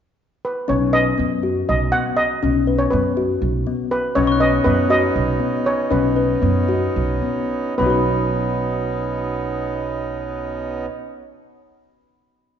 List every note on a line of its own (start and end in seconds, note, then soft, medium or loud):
0.45 0.68 B4 medium
0.68 1.11 B1 medium
0.68 0.83 C#4 medium
0.68 0.80 C#5 medium
0.93 1.08 B4 medium
0.93 1.68 D#5 medium
1.18 1.61 F#2 medium
1.18 1.33 B3 medium
1.43 1.73 F#4 medium
1.69 1.90 B1 medium
1.69 1.94 D#5 medium
1.92 2.22 B3 medium
1.92 2.18 F#5 medium
2.17 2.81 D#5 medium
2.43 2.85 B1 medium
2.43 2.57 C#4 medium
2.67 2.82 B4 medium
2.78 2.92 C#5 medium
2.90 3.34 F#2 medium
2.90 3.07 B3 medium
2.90 3.61 B4 medium
3.17 3.46 F#4 medium
3.42 3.62 B1 medium
3.67 3.96 B3 medium
3.91 4.02 B4 medium
4.15 4.58 B1 medium
4.15 7.75 B3 medium
4.15 7.74 C#4 medium
4.15 4.30 C#4 medium
4.15 7.75 D#4 medium
4.15 4.41 C#5 medium
4.27 4.75 C#6 medium
4.32 4.77 F#6 soft
4.40 4.55 B4 medium
4.40 4.63 D#5 medium
4.64 5.07 F#2 medium
4.64 4.80 B3 medium
4.64 4.88 B4 medium
4.90 5.19 F#4 medium
4.90 5.68 D#5 medium
5.16 5.36 B1 medium
5.40 5.70 B3 medium
5.66 5.92 C#5 medium
5.91 6.35 B1 medium
5.91 6.06 C#4 medium
5.91 7.47 B4 medium
6.16 6.32 B4 medium
6.42 6.87 F#2 medium
6.42 6.58 B3 medium
6.69 7.01 F#4 medium
6.96 7.19 B1 medium
7.22 7.55 B3 medium
7.78 10.87 B1 medium
7.78 10.86 B2 medium
7.78 10.85 B3 medium
7.78 10.87 B3 medium
7.78 10.86 C#4 medium
7.78 10.86 D#4 medium
7.78 10.85 B4 medium
7.78 10.87 B5 soft
7.82 10.89 D#4 medium
7.86 10.94 F#4 medium
7.86 10.97 B4 medium